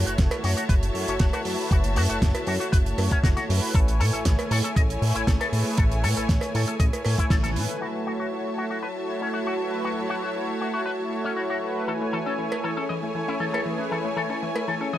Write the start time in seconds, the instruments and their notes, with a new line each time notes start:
Already playing: string section F#4 C#5 E5 A5
0.06 analog synth bass F#1, analog synth pad A3 E4 F#4 C#5, clean electric guitar F#4, closed hi-hat
0.18 analog synth bass F#1, kick, snare, closed hi-hat
0.31 closed hi-hat, cowbell
0.43 analog synth bass F#2, analog synth pad A3 E4 F#4 C#5, clean electric guitar F#4, open hi-hat
0.57 clean electric guitar F#4, closed hi-hat
0.69 analog synth bass F#1, clean electric guitar B4, kick, closed hi-hat
0.82 analog synth pad A3 E4 F#4 C#5, closed hi-hat
0.94 analog synth bass F#2, open hi-hat
1.08 analog synth bass F#1, clean electric guitar C#4, closed hi-hat
1.19 analog synth bass F#1, analog synth pad A3 E4 F#4 C#5, clean electric guitar F#4, kick, snare, closed hi-hat
1.33 clean electric guitar F#4, closed hi-hat, cowbell
1.45 analog synth bass F#2, analog synth pad A3 E4 F#4 B4, open hi-hat
1.70 analog synth bass F#1, analog synth pad A3 E4 F#4 C#5, clean electric guitar F#4, kick, closed hi-hat
1.84 closed hi-hat
1.96 analog synth bass F#2, clean electric guitar F#4, open hi-hat
2.09 analog synth bass F#1, analog synth pad A3 E4 F#4 C#5, clean electric guitar F#4, closed hi-hat
2.22 analog synth bass F#1, kick, snare, closed hi-hat
2.35 closed hi-hat, cowbell
2.47 analog synth bass F#2, analog synth pad A3 E4 F#4 C#5, clean electric guitar F#4, open hi-hat
2.60 clean electric guitar F#4, closed hi-hat
2.72 analog synth bass F#1, clean electric guitar B4, kick, closed hi-hat
2.86 analog synth pad A3 E4 F#4 C#5, closed hi-hat
2.98 analog synth bass F#2, open hi-hat, cowbell
3.11 analog synth bass F#1, clean electric guitar C#4, kick, closed hi-hat
3.23 analog synth bass F#1, analog synth pad A3 E4 F#4 C#5, clean electric guitar F#4, kick, snare, closed hi-hat
3.37 clean electric guitar F#4, snare, closed hi-hat
3.48 analog synth bass F#2, analog synth pad A3 E4 F#4 B4, open hi-hat
3.73 analog synth bass A1, string section A3 E4 C#5 G#5, analog synth pad A3 E4 C#5 G#5, clean electric guitar A4, kick, closed hi-hat
3.88 closed hi-hat
4.00 analog synth bass A2, clean electric guitar A4, open hi-hat
4.13 analog synth bass A1, analog synth pad A3 E4 C#5 G#5, clean electric guitar A4, closed hi-hat
4.25 analog synth bass A1, kick, snare, closed hi-hat
4.39 closed hi-hat, cowbell
4.51 analog synth bass A2, analog synth pad A3 E4 G#4 C#5, clean electric guitar A4, open hi-hat
4.64 clean electric guitar A4, closed hi-hat
4.76 analog synth bass A1, clean electric guitar D#5, kick, closed hi-hat
4.89 analog synth pad A3 E4 C#5 G#5, closed hi-hat
5.02 analog synth bass A2, open hi-hat
5.15 analog synth bass A1, clean electric guitar E4, closed hi-hat
5.27 analog synth bass A1, analog synth pad A3 E4 G#4 C#5, clean electric guitar A4, kick, snare, closed hi-hat
5.41 clean electric guitar A4, closed hi-hat, cowbell
5.52 analog synth bass A2, analog synth pad A3 E4 G#4 B4, open hi-hat
5.77 analog synth bass A1, analog synth pad A3 E4 C#5 G#5, clean electric guitar A4, kick, closed hi-hat
5.92 closed hi-hat
6.03 analog synth bass A2, clean electric guitar A4, open hi-hat
6.16 analog synth bass A1, analog synth pad A3 E4 C#5 G#5, clean electric guitar A4, closed hi-hat
6.29 analog synth bass A1, kick, snare, closed hi-hat
6.41 closed hi-hat, cowbell
6.54 analog synth bass A2, analog synth pad A3 E4 G#4 C#5, clean electric guitar A4, open hi-hat
6.68 clean electric guitar A4, closed hi-hat
6.80 analog synth bass A1, clean electric guitar D#5, kick, closed hi-hat
6.93 analog synth bass A2, analog synth pad A3 E4 C#5 G#5, closed hi-hat, cowbell
7.05 analog synth bass A2, open hi-hat, cowbell
7.18 analog synth bass A1, clean electric guitar E4, kick, closed hi-hat
7.30 analog synth bass A1, clean electric guitar A4, kick, snare, closed hi-hat
7.43 analog synth pad A3 E4 B4 G#5, clean electric guitar A4, snare, closed hi-hat
7.56 analog synth bass A2, open hi-hat
7.69 closed hi-hat
7.81 string section F#3 F#4 E5 A5, analog synth pad A3 E4 F#4 C#5, clean electric guitar F#4, closed hi-hat
7.95 closed hi-hat
8.07 clean electric guitar F#4, closed hi-hat
8.20 analog synth pad A3 E4 F#4 C#5, clean electric guitar F#4
8.32 closed hi-hat
8.46 closed hi-hat
8.57 analog synth pad A3 E4 F#4 C#5, clean electric guitar F#4, closed hi-hat
8.70 clean electric guitar F#4, closed hi-hat
8.83 clean electric guitar B4, closed hi-hat
8.96 analog synth pad A3 E4 F#4 C#5, closed hi-hat
9.08 closed hi-hat
9.21 clean electric guitar C#4, closed hi-hat
9.33 analog synth pad A3 E4 F#4 C#5, clean electric guitar F#4, closed hi-hat
9.47 clean electric guitar F#4, closed hi-hat
9.59 analog synth pad A3 E4 F#4 B4, closed hi-hat
9.84 analog synth pad A3 E4 F#4 C#5, clean electric guitar F#4, closed hi-hat
9.98 closed hi-hat
10.10 clean electric guitar F#4, closed hi-hat
10.23 analog synth pad A3 E4 F#4 C#5, clean electric guitar F#4, closed hi-hat
10.36 closed hi-hat
10.48 closed hi-hat
10.60 analog synth pad A3 E4 F#4 C#5, clean electric guitar F#4, closed hi-hat
10.74 clean electric guitar F#4, closed hi-hat
10.86 clean electric guitar B4, closed hi-hat
10.99 analog synth pad A3 E4 F#4 C#5, closed hi-hat
11.11 closed hi-hat
11.24 clean electric guitar C#4
11.36 analog synth pad A3 E4 F#4 C#5, clean electric guitar F#4, closed hi-hat
11.50 clean electric guitar F#4, closed hi-hat
11.62 analog synth pad A3 E4 F#4 B4, closed hi-hat
11.87 synth arpeggio sound E3, analog synth pad A3 E4 C#5 G#5, string section A3 E4 C#5 G#5, clean electric guitar A4, closed hi-hat
12.01 synth arpeggio sound A3, closed hi-hat
12.13 synth arpeggio sound E3, clean electric guitar A4, closed hi-hat
12.25 analog synth pad A3 E4 C#5 G#5, synth arpeggio sound C#4, clean electric guitar A4, closed hi-hat
12.38 synth arpeggio sound E3, closed hi-hat
12.52 synth arpeggio sound A3, closed hi-hat, cowbell
12.63 synth arpeggio sound E3, analog synth pad A3 E4 G#4 C#5, clean electric guitar A4, closed hi-hat
12.77 synth arpeggio sound C#4, clean electric guitar A4, closed hi-hat
12.89 synth arpeggio sound E3, clean electric guitar D#5, closed hi-hat
13.02 analog synth pad A3 E4 C#5 G#5, synth arpeggio sound A3, closed hi-hat
13.15 synth arpeggio sound E3, closed hi-hat
13.28 synth arpeggio sound C#4, clean electric guitar E4, closed hi-hat
13.40 synth arpeggio sound E3, analog synth pad A3 E4 G#4 C#5, clean electric guitar A4, closed hi-hat
13.53 synth arpeggio sound A3, clean electric guitar A4, closed hi-hat, cowbell
13.65 synth arpeggio sound E3, analog synth pad A3 E4 G#4 B4, closed hi-hat
13.79 synth arpeggio sound C#4
13.91 synth arpeggio sound E3, analog synth pad A3 E4 C#5 G#5, clean electric guitar A4, closed hi-hat
14.04 synth arpeggio sound A3, closed hi-hat
14.16 synth arpeggio sound E3, clean electric guitar A4, closed hi-hat
14.29 analog synth pad A3 E4 C#5 G#5, synth arpeggio sound C#4, clean electric guitar A4, closed hi-hat
14.42 synth arpeggio sound E3, closed hi-hat
14.55 synth arpeggio sound A3, closed hi-hat, cowbell
14.67 synth arpeggio sound E3, analog synth pad A3 E4 G#4 C#5, clean electric guitar A4, closed hi-hat
14.81 synth arpeggio sound C#4, clean electric guitar A4, closed hi-hat
14.93 synth arpeggio sound E3, clean electric guitar D#5, closed hi-hat